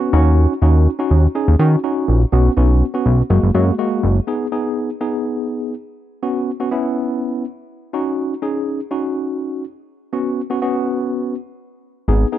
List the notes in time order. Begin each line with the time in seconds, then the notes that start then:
Already playing: B3 C#4 F#4
0.13 D#2 C#4 D#4 F#4
0.62 D#2 C#4 D#4 F#4
0.99 C#4 D#4 F#4
1.11 D#2
1.35 C#4 D#4 G#4
1.48 D#2
1.59 D#3 C#4 D#4 F#4
1.84 C#4 D#4 F#4
2.08 A#1
2.32 B1 B3 C#4 F#4
2.57 B1 B3 C#4 F#4
2.94 B3 C#4 F#4
3.06 B1
3.30 F#1 G#3 A#3 F#4
3.43 F#1
3.54 F#2 G#3 A#3 F#4
3.79 G#3 A#3 F#4
4.03 F#1
4.27 B3 D#4 G#4
4.52 B3 D#4 G#4
5.01 B3 D#4 G#4
6.22 B3 C#4 F#4
6.60 B3 C#4 F#4
6.71 B3 C#4 E4
7.93 C#4 D#4 F#4
8.42 C#4 D#4 G#4
8.91 C#4 D#4 F#4
10.13 B3 C#4 F#4
10.50 B3 C#4 F#4
10.62 B3 C#4 F#4
12.08 G#1 B3 D#4 G#4
12.32 B3 D#4 G#4